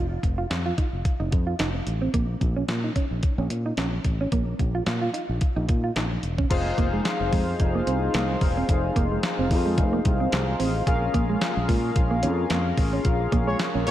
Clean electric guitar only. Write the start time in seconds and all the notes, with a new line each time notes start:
0.23 muted clean electric guitar stroke
0.38 F4
0.50 muted clean electric guitar stroke
0.66 F4
0.78 D#4
1.20 D#4
1.32 muted clean electric guitar stroke
1.47 F4
1.59 D#4
1.75 muted clean electric guitar stroke
2.02 C4
2.14 A#3
2.41 muted clean electric guitar stroke
2.56 C#4
2.69 muted clean electric guitar stroke
2.84 D#4
2.96 C#4
3.39 C#4
3.51 muted clean electric guitar stroke
3.66 D#4
3.78 C#4
3.93 muted clean electric guitar stroke
4.21 C#4
4.33 A#3
4.60 muted clean electric guitar stroke
4.75 F4
4.87 muted clean electric guitar stroke
5.01 F4
5.14 D#4
5.56 D#4
5.68 muted clean electric guitar stroke
5.84 F4
5.96 D#4
6.11 muted clean electric guitar stroke
6.38 C#4
6.65 muted clean electric guitar stroke
6.78 A#3
6.93 G#3
7.32 G#3
7.59 muted clean electric guitar stroke
7.75 A#3
7.87 C4
8.14 A#3
8.42 muted clean electric guitar stroke
8.57 C4
8.84 muted clean electric guitar stroke
8.96 A#3
9.12 G#3
9.39 C4
9.51 muted clean electric guitar stroke
9.66 G#3
9.93 A#3
10.05 muted clean electric guitar stroke
10.20 C4
10.60 C4
11.02 muted clean electric guitar stroke
11.14 A#3
11.30 G#3
11.68 G#3
11.95 muted clean electric guitar stroke
12.11 A#3
12.23 C#4
12.50 A#3
12.78 muted clean electric guitar stroke
12.93 C#4
13.21 muted clean electric guitar stroke
13.32 A#3
13.47 G#3
13.75 C#4
13.87 muted clean electric guitar stroke